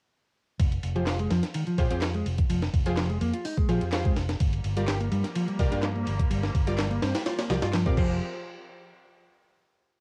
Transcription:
0.59 fingered electric bass F1, kick, closed hi-hat, ride
0.72 closed hi-hat, ride
0.83 fingered electric bass F1, ride
0.95 clean electric guitar F3, synth stab F4 G4 G#4 C5, closed hi-hat, ride
1.07 clean electric guitar F4, snare, clap, closed hi-hat, ride
1.19 clean electric guitar G#3, closed hi-hat, ride
1.31 fingered electric bass F2, clean electric guitar F3, snare, ride
1.43 snare, closed hi-hat
1.54 clean electric guitar D#3, closed hi-hat, ride
1.67 clean electric guitar F3, closed hi-hat
1.78 fingered electric bass A#1, synth stab F4 G4 G#4 C5, kick, ride
1.91 fingered electric bass F2, clean electric guitar C4, synth stab F4 G4 G#4 C5, closed hi-hat
2.02 snare, clap, closed hi-hat, ride
2.14 clean electric guitar G#3, closed hi-hat
2.26 fingered electric bass F1, ride
2.38 kick, closed hi-hat
2.50 fingered electric bass F1, clean electric guitar F3, closed hi-hat, ride
2.62 snare, closed hi-hat
2.74 fingered electric bass F1, kick, ride
2.86 clean electric guitar F3, synth stab F4 G4 G#4 C5, closed hi-hat
2.97 snare, clap, closed hi-hat, ride
3.10 clean electric guitar G#3, closed hi-hat
3.21 fingered electric bass F2, clean electric guitar A#3, ride
3.34 clean electric guitar F4, closed hi-hat
3.45 clean electric guitar D#4, closed hi-hat, open hi-hat
3.57 clean electric guitar G#3, kick, closed hi-hat
3.69 fingered electric bass A#1, clean electric guitar F3, synth stab F4 G4 G#4 C5, ride
3.81 fingered electric bass F2, closed hi-hat
3.93 synth stab F4 G4 G#4 C5, snare, clap, closed hi-hat, ride
4.05 clean electric guitar G#3, kick, closed hi-hat
4.16 fingered electric bass F1, snare, ride
4.29 snare, closed hi-hat
4.40 fingered electric bass G1, string section F3 G3 A#3, kick, closed hi-hat, ride
4.53 closed hi-hat, ride
4.64 fingered electric bass G1, ride
4.77 clean electric guitar G3, synth stab F4 G4 A#4 D5, closed hi-hat, ride
4.88 clean electric guitar G4, snare, clap, closed hi-hat, ride
5.00 clean electric guitar A#3, closed hi-hat, ride
5.12 fingered electric bass G2, clean electric guitar G3, ride
5.24 snare, closed hi-hat
5.35 clean electric guitar F3, closed hi-hat, ride
5.48 clean electric guitar G3, closed hi-hat
5.59 fingered electric bass C2, synth stab F4 G4 A#4 D5, kick, ride
5.72 fingered electric bass G2, clean electric guitar D4, synth stab F4 G4 A#4 D5, closed hi-hat
5.83 snare, clap, closed hi-hat, ride
5.95 clean electric guitar A#3, closed hi-hat
6.07 fingered electric bass G1, ride
6.19 kick, closed hi-hat
6.31 fingered electric bass G1, clean electric guitar G3, closed hi-hat, ride
6.43 snare, closed hi-hat
6.55 fingered electric bass G1, kick, ride
6.67 clean electric guitar G3, synth stab F4 G4 A#4 D5, closed hi-hat
6.79 snare, clap, closed hi-hat, ride
6.91 clean electric guitar A#3, closed hi-hat
7.02 fingered electric bass G2, clean electric guitar C4, snare, ride
7.15 clean electric guitar G4, snare, closed hi-hat, ride
7.26 clean electric guitar F4, snare, closed hi-hat, ride
7.39 clean electric guitar A#3, snare, closed hi-hat, ride
7.50 fingered electric bass C2, clean electric guitar F3, synth stab F4 G4 A#4 D5, snare, ride
7.62 fingered electric bass G2, clean electric guitar F4, snare, closed hi-hat, ride
7.74 clean electric guitar F3, snare, clap, closed hi-hat, ride
7.86 fingered electric bass A#1, clean electric guitar C4, synth stab F4 G4 A#4 D5, kick, closed hi-hat
7.97 fingered electric bass F1, string section F3 F4 G4 G#4 C5, clean electric guitar F3, synth stab F4 G4 G#4 C5, kick, crash

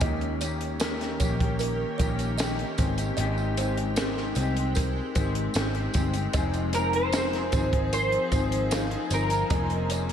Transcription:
0.01 picked electric bass D#2, clean electric guitar D#3 A#3 C#4 G4, ambient pad D#3 A#3 C#4 G4, kalimba D#5, kick, closed hi-hat, tambourine
0.21 closed hi-hat
0.41 clean electric guitar D#3 A#3 C#4 G4, kalimba C#5, closed hi-hat, tambourine
0.61 closed hi-hat
0.80 clean electric guitar D#3 A#3 C#4 G4, kalimba A#4, snare, closed hi-hat, tambourine
1.01 snare, closed hi-hat
1.20 picked electric bass A#1, clean electric guitar D#3 A#3 C#4 G4, kalimba C#5, kick, closed hi-hat, tambourine
1.39 clean electric guitar A#3 C#4 G4, kick, closed hi-hat
1.59 kalimba A#4, closed hi-hat, tambourine
1.98 picked electric bass A#1, clean electric guitar D#3 A#3 C#4 G4, kalimba C#5, kick, closed hi-hat, tambourine
2.19 closed hi-hat, tambourine
2.38 clean electric guitar D#3 A#3 C#4 G4, kalimba D#5, snare, closed hi-hat, tambourine
2.58 clean electric guitar A#3 C#4 G4, closed hi-hat
2.78 picked electric bass G#1, clean electric guitar G#3 C4 D#4 G4, ambient pad G#3 C4, kalimba C5, kick, closed hi-hat, tambourine
2.98 clean electric guitar C4 D#4 G4, closed hi-hat, tambourine
3.17 picked electric bass G#1, clean electric guitar G#3 C4 D#4 G4, kalimba D#5, closed hi-hat, tambourine
3.38 tambourine
3.57 clean electric guitar G#3 C4 D#4 G4, kalimba C5, closed hi-hat, tambourine
3.78 closed hi-hat
3.96 clean electric guitar G#3 C4 D#4 G4, kalimba A#4, snare, closed hi-hat, tambourine
4.17 snare
4.35 picked electric bass C2, clean electric guitar G#3 C4 D#4, kalimba C5, closed hi-hat, tambourine
4.39 clean electric guitar G4
4.56 clean electric guitar C4 D#4 G4, closed hi-hat
4.75 kalimba A#4, kick, closed hi-hat, tambourine
5.15 picked electric bass G#1, clean electric guitar G#3 C4 D#4 G4, kalimba C5, kick, closed hi-hat, tambourine
5.35 closed hi-hat
5.54 picked electric bass G#1, clean electric guitar G#3 C4 D#4 G4, snare, closed hi-hat, tambourine
5.75 clean electric guitar C4 D#4 G4, closed hi-hat
5.94 picked electric bass G1, clean electric guitar G#3 C4 D#4 G4, kick, closed hi-hat, tambourine
6.14 clean electric guitar C4 D#4 G4, closed hi-hat, tambourine
6.33 picked electric bass F1, ambient pad F3 D#4 G#4, clean electric guitar F3 C4 D#4 G#4, kalimba D#5, kick, closed hi-hat, tambourine
6.54 closed hi-hat, tambourine
6.73 clean electric guitar F3 C4 D#4 A#4, kalimba C5, closed hi-hat, tambourine
6.77 clean electric guitar G#4
6.93 clean electric guitar C5, closed hi-hat
7.13 clean electric guitar F3 C4 D#4 G#4, kalimba A#4, snare, closed hi-hat, tambourine
7.33 snare, closed hi-hat
7.52 picked electric bass G#1, clean electric guitar F3 C4 D#4 G#4, kalimba C5, kick, closed hi-hat, tambourine
7.72 clean electric guitar C4 D#4 G#4, kick, closed hi-hat
7.93 kalimba A#4, clean electric guitar C5, closed hi-hat, tambourine
8.12 closed hi-hat
8.32 picked electric bass G#1, clean electric guitar F3 C4 D#4 G#4, kalimba C5, kick, closed hi-hat, tambourine
8.52 closed hi-hat, tambourine
8.71 clean electric guitar F3 C4 D#4 G#4, kalimba F5, snare, closed hi-hat, tambourine
8.91 clean electric guitar C4 D#4 G#4, closed hi-hat
9.10 picked electric bass G1, clean electric guitar F3 C4 D#4 G#4 A#4, kalimba C5, closed hi-hat, tambourine
9.30 clean electric guitar C4 D#4 G#4, closed hi-hat, tambourine
9.50 picked electric bass F1, clean electric guitar F3 A#3 C#4 G#4, ambient pad G#3 A#3 C#4, kalimba D#5, kick, closed hi-hat, tambourine
9.70 closed hi-hat
9.89 clean electric guitar F3 A#3 C#4 G#4, kalimba C#5, closed hi-hat, tambourine
10.09 closed hi-hat

